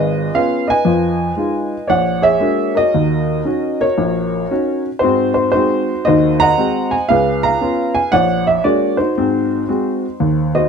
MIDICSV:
0, 0, Header, 1, 2, 480
1, 0, Start_track
1, 0, Tempo, 519031
1, 793, Time_signature, 4, 2, 24, 8
1, 9884, End_track
2, 0, Start_track
2, 0, Title_t, "Upright piano"
2, 0, Program_c, 0, 0
2, 0, Note_on_c, 0, 32, 67
2, 0, Note_on_c, 0, 65, 65
2, 0, Note_on_c, 0, 68, 59
2, 0, Note_on_c, 0, 71, 63
2, 0, Note_on_c, 0, 75, 87
2, 257, Note_off_c, 0, 32, 0
2, 283, Note_off_c, 0, 65, 0
2, 320, Note_on_c, 0, 59, 53
2, 322, Note_on_c, 0, 61, 48
2, 322, Note_on_c, 0, 77, 89
2, 329, Note_on_c, 0, 65, 57
2, 342, Note_off_c, 0, 75, 0
2, 613, Note_off_c, 0, 71, 0
2, 614, Note_off_c, 0, 77, 0
2, 624, Note_on_c, 0, 75, 64
2, 627, Note_on_c, 0, 71, 64
2, 648, Note_on_c, 0, 80, 94
2, 650, Note_off_c, 0, 59, 0
2, 651, Note_off_c, 0, 61, 0
2, 655, Note_off_c, 0, 65, 0
2, 756, Note_off_c, 0, 68, 0
2, 786, Note_on_c, 0, 41, 63
2, 794, Note_on_c, 0, 53, 65
2, 1204, Note_off_c, 0, 41, 0
2, 1208, Note_off_c, 0, 53, 0
2, 1263, Note_on_c, 0, 56, 48
2, 1269, Note_on_c, 0, 63, 47
2, 1278, Note_on_c, 0, 65, 52
2, 1603, Note_off_c, 0, 56, 0
2, 1607, Note_off_c, 0, 63, 0
2, 1611, Note_off_c, 0, 65, 0
2, 1713, Note_off_c, 0, 75, 0
2, 1714, Note_off_c, 0, 71, 0
2, 1725, Note_off_c, 0, 80, 0
2, 1734, Note_on_c, 0, 73, 60
2, 1735, Note_on_c, 0, 74, 60
2, 1754, Note_on_c, 0, 34, 58
2, 1754, Note_on_c, 0, 78, 85
2, 2041, Note_off_c, 0, 73, 0
2, 2054, Note_off_c, 0, 78, 0
2, 2054, Note_on_c, 0, 68, 62
2, 2055, Note_on_c, 0, 73, 61
2, 2065, Note_on_c, 0, 76, 95
2, 2176, Note_off_c, 0, 34, 0
2, 2221, Note_on_c, 0, 56, 52
2, 2225, Note_on_c, 0, 58, 46
2, 2230, Note_on_c, 0, 62, 43
2, 2233, Note_on_c, 0, 66, 52
2, 2524, Note_off_c, 0, 76, 0
2, 2535, Note_off_c, 0, 66, 0
2, 2544, Note_on_c, 0, 70, 53
2, 2549, Note_on_c, 0, 66, 52
2, 2562, Note_on_c, 0, 75, 91
2, 2571, Note_off_c, 0, 56, 0
2, 2573, Note_off_c, 0, 58, 0
2, 2576, Note_off_c, 0, 62, 0
2, 2680, Note_off_c, 0, 68, 0
2, 2680, Note_off_c, 0, 73, 0
2, 2681, Note_off_c, 0, 74, 0
2, 2723, Note_on_c, 0, 39, 62
2, 3145, Note_off_c, 0, 39, 0
2, 3190, Note_off_c, 0, 66, 0
2, 3190, Note_on_c, 0, 61, 47
2, 3194, Note_on_c, 0, 63, 43
2, 3204, Note_on_c, 0, 66, 53
2, 3485, Note_off_c, 0, 70, 0
2, 3509, Note_off_c, 0, 66, 0
2, 3519, Note_on_c, 0, 70, 51
2, 3523, Note_on_c, 0, 66, 49
2, 3524, Note_on_c, 0, 73, 82
2, 3537, Note_off_c, 0, 61, 0
2, 3539, Note_off_c, 0, 63, 0
2, 3560, Note_off_c, 0, 75, 0
2, 3678, Note_on_c, 0, 34, 64
2, 4104, Note_off_c, 0, 34, 0
2, 4159, Note_off_c, 0, 66, 0
2, 4171, Note_on_c, 0, 61, 54
2, 4173, Note_on_c, 0, 66, 59
2, 4177, Note_on_c, 0, 63, 47
2, 4451, Note_off_c, 0, 70, 0
2, 4454, Note_off_c, 0, 73, 0
2, 4509, Note_off_c, 0, 61, 0
2, 4509, Note_off_c, 0, 66, 0
2, 4511, Note_off_c, 0, 63, 0
2, 4617, Note_on_c, 0, 72, 78
2, 4637, Note_on_c, 0, 63, 60
2, 4648, Note_on_c, 0, 66, 60
2, 4651, Note_on_c, 0, 44, 61
2, 4657, Note_on_c, 0, 60, 65
2, 4927, Note_off_c, 0, 72, 0
2, 4941, Note_on_c, 0, 72, 73
2, 5070, Note_off_c, 0, 44, 0
2, 5073, Note_off_c, 0, 60, 0
2, 5088, Note_off_c, 0, 72, 0
2, 5102, Note_on_c, 0, 72, 82
2, 5104, Note_off_c, 0, 63, 0
2, 5107, Note_off_c, 0, 66, 0
2, 5118, Note_on_c, 0, 63, 61
2, 5121, Note_on_c, 0, 66, 62
2, 5138, Note_on_c, 0, 60, 46
2, 5139, Note_on_c, 0, 56, 47
2, 5471, Note_off_c, 0, 60, 0
2, 5472, Note_off_c, 0, 56, 0
2, 5594, Note_on_c, 0, 75, 85
2, 5599, Note_off_c, 0, 66, 0
2, 5599, Note_off_c, 0, 72, 0
2, 5613, Note_on_c, 0, 66, 59
2, 5613, Note_on_c, 0, 72, 63
2, 5621, Note_on_c, 0, 51, 63
2, 5622, Note_on_c, 0, 39, 67
2, 5898, Note_off_c, 0, 75, 0
2, 5917, Note_on_c, 0, 82, 114
2, 5930, Note_on_c, 0, 78, 74
2, 5939, Note_on_c, 0, 75, 67
2, 6032, Note_off_c, 0, 51, 0
2, 6033, Note_off_c, 0, 39, 0
2, 6046, Note_off_c, 0, 63, 0
2, 6078, Note_off_c, 0, 66, 0
2, 6082, Note_on_c, 0, 56, 51
2, 6086, Note_on_c, 0, 60, 51
2, 6092, Note_on_c, 0, 66, 56
2, 6391, Note_on_c, 0, 80, 80
2, 6416, Note_off_c, 0, 82, 0
2, 6420, Note_off_c, 0, 56, 0
2, 6422, Note_off_c, 0, 60, 0
2, 6425, Note_off_c, 0, 66, 0
2, 6532, Note_off_c, 0, 72, 0
2, 6532, Note_off_c, 0, 78, 0
2, 6537, Note_off_c, 0, 75, 0
2, 6549, Note_off_c, 0, 80, 0
2, 6553, Note_on_c, 0, 77, 92
2, 6565, Note_on_c, 0, 71, 67
2, 6566, Note_on_c, 0, 37, 63
2, 6571, Note_on_c, 0, 68, 64
2, 6874, Note_on_c, 0, 82, 94
2, 6875, Note_off_c, 0, 77, 0
2, 6889, Note_on_c, 0, 77, 64
2, 6980, Note_off_c, 0, 37, 0
2, 7035, Note_on_c, 0, 59, 49
2, 7036, Note_on_c, 0, 61, 48
2, 7046, Note_on_c, 0, 65, 58
2, 7319, Note_off_c, 0, 82, 0
2, 7348, Note_on_c, 0, 80, 88
2, 7368, Note_off_c, 0, 59, 0
2, 7369, Note_off_c, 0, 61, 0
2, 7374, Note_off_c, 0, 65, 0
2, 7477, Note_off_c, 0, 71, 0
2, 7480, Note_off_c, 0, 68, 0
2, 7481, Note_off_c, 0, 77, 0
2, 7507, Note_on_c, 0, 78, 95
2, 7516, Note_off_c, 0, 80, 0
2, 7516, Note_on_c, 0, 73, 64
2, 7517, Note_on_c, 0, 34, 69
2, 7522, Note_on_c, 0, 74, 61
2, 7806, Note_off_c, 0, 78, 0
2, 7833, Note_on_c, 0, 76, 84
2, 7930, Note_off_c, 0, 34, 0
2, 7978, Note_off_c, 0, 74, 0
2, 7982, Note_off_c, 0, 76, 0
2, 7988, Note_on_c, 0, 56, 53
2, 7991, Note_on_c, 0, 62, 50
2, 7992, Note_on_c, 0, 74, 83
2, 7997, Note_on_c, 0, 58, 52
2, 7999, Note_on_c, 0, 66, 63
2, 8288, Note_off_c, 0, 74, 0
2, 8291, Note_off_c, 0, 66, 0
2, 8298, Note_on_c, 0, 72, 70
2, 8305, Note_on_c, 0, 66, 51
2, 8308, Note_on_c, 0, 63, 54
2, 8324, Note_off_c, 0, 56, 0
2, 8326, Note_off_c, 0, 62, 0
2, 8328, Note_off_c, 0, 58, 0
2, 8434, Note_off_c, 0, 73, 0
2, 8487, Note_on_c, 0, 60, 64
2, 8488, Note_on_c, 0, 44, 63
2, 8895, Note_off_c, 0, 60, 0
2, 8896, Note_off_c, 0, 44, 0
2, 8949, Note_off_c, 0, 66, 0
2, 8959, Note_on_c, 0, 56, 50
2, 8959, Note_on_c, 0, 60, 47
2, 8963, Note_on_c, 0, 66, 54
2, 9290, Note_off_c, 0, 56, 0
2, 9290, Note_off_c, 0, 60, 0
2, 9292, Note_off_c, 0, 66, 0
2, 9435, Note_on_c, 0, 39, 62
2, 9741, Note_off_c, 0, 72, 0
2, 9755, Note_on_c, 0, 66, 57
2, 9755, Note_on_c, 0, 72, 55
2, 9755, Note_on_c, 0, 75, 79
2, 9860, Note_off_c, 0, 39, 0
2, 9884, Note_off_c, 0, 63, 0
2, 9884, Note_off_c, 0, 66, 0
2, 9884, Note_off_c, 0, 72, 0
2, 9884, Note_off_c, 0, 75, 0
2, 9884, End_track
0, 0, End_of_file